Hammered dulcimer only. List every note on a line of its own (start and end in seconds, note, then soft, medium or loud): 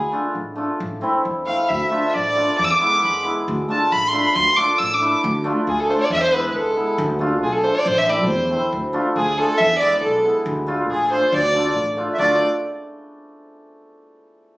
0.12 0.23 A3 medium
0.12 0.24 D4 medium
0.12 0.25 F4 medium
0.55 0.68 A3 medium
0.55 0.68 D4 medium
0.55 0.69 F4 medium
1.01 1.13 A3 medium
1.01 1.13 C4 medium
1.01 1.14 E4 medium
1.45 1.57 A3 medium
1.45 1.58 C4 medium
1.45 1.58 E4 medium
1.90 2.02 A3 medium
1.90 2.02 D4 medium
1.90 2.03 F4 medium
2.35 2.46 A3 medium
2.35 2.47 D4 medium
2.35 2.47 F4 medium
2.80 3.21 G#3 medium
2.80 2.91 B3 medium
2.80 2.92 E4 medium
3.23 3.52 G#3 medium
3.23 3.35 B3 medium
3.23 3.36 E4 medium
3.68 3.80 A3 medium
3.68 3.80 D4 medium
3.68 3.81 F4 medium
4.12 4.23 A3 medium
4.12 4.24 D4 medium
4.12 4.24 F4 medium
4.56 4.67 A3 medium
4.56 4.68 D4 medium
4.56 4.68 F4 medium
4.99 5.11 A3 medium
4.99 5.12 D4 medium
4.99 5.12 E4 medium
5.44 5.55 A3 loud
5.44 5.56 D4 medium
5.44 5.56 F4 medium
5.88 5.99 A3 medium
5.88 6.00 D4 medium
5.88 6.00 F4 medium
6.31 6.74 G#3 medium
6.31 6.43 B3 medium
6.31 6.44 E4 medium
6.75 7.03 G#3 medium
6.75 6.87 B3 soft
6.75 6.88 E4 medium
7.19 7.30 A3 medium
7.19 7.31 D4 medium
7.19 7.31 F4 loud
7.62 7.74 A3 medium
7.62 7.74 D4 medium
7.62 7.75 F4 medium
8.07 8.18 A3 medium
8.07 8.18 C4 medium
8.07 8.19 E4 medium
8.50 8.61 A3 medium
8.50 8.62 C4 medium
8.50 8.62 E4 medium
8.93 9.05 A3 medium
8.93 9.05 D4 medium
8.93 9.05 F4 loud
9.37 9.48 A3 medium
9.37 9.49 D4 medium
9.37 9.49 F4 medium
9.80 10.22 G#3 medium
9.80 9.92 B3 medium
9.80 9.93 E4 medium
10.23 10.51 G#3 medium
10.23 10.35 B3 medium
10.23 10.36 E4 medium
10.67 10.78 A3 medium
10.67 10.79 D4 medium
10.67 10.79 F4 loud
11.10 11.22 A3 medium
11.10 11.22 D4 medium
11.10 11.22 F4 medium
11.54 11.65 A3 medium
11.54 11.65 D4 medium
11.54 11.66 F4 medium
11.96 12.08 A3 medium
11.96 12.08 D4 medium
11.96 12.09 F4 medium
12.19 12.39 A3 medium
12.19 12.39 D4 medium
12.19 12.39 F4 loud